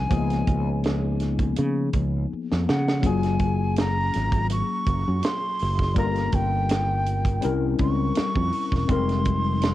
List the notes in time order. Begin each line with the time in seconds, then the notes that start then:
Already playing: F3 C4 C#4 D#4 A#4 G#5
0.09 C#2 F3 A#3 B3 D#4, kick, closed hi-hat
0.13 G#4
0.30 snare, closed hi-hat
0.47 C#2, kick, closed hi-hat
0.84 snare, closed hi-hat
1.20 snare, closed hi-hat
1.39 kick, closed hi-hat
1.56 C#3, closed hi-hat
1.93 C#2, kick, closed hi-hat
2.33 muted fretless electric bass stroke
2.51 F2, snare
2.68 C#3 F#5, snare
2.88 snare
3.02 F#1 F#3 A#3 C#4 F4, kick, closed hi-hat
3.06 G#4 G#5
3.23 snare, closed hi-hat
3.39 kick, closed hi-hat
3.76 A#5, snare, closed hi-hat
4.13 G#1, snare, closed hi-hat
4.32 kick, closed hi-hat
4.50 C#6, closed hi-hat
4.87 F#1, kick, closed hi-hat
5.08 F#2
5.23 C6, snare, closed hi-hat
5.59 F#1, open hi-hat
5.79 kick, snare
5.94 G1 G3 A#3 C#4 F4 A#5, kick, closed hi-hat
5.98 A#4
6.16 snare, closed hi-hat
6.32 G1 G5, kick, closed hi-hat
6.69 snare, closed hi-hat
7.06 closed hi-hat
7.25 kick, closed hi-hat
7.41 C2 G3 C4 C#4 E4 A#4, closed hi-hat
7.79 C#2 C#6, kick, closed hi-hat
8.15 muted fretless electric bass stroke, snare, closed hi-hat
8.36 F2, kick
8.52 open hi-hat
8.72 E1, kick, snare
8.87 F1 G3 G#3 C4 D#4 C6, kick, closed hi-hat
8.92 A#4
9.09 snare, closed hi-hat
9.25 kick, closed hi-hat
9.61 snare, closed hi-hat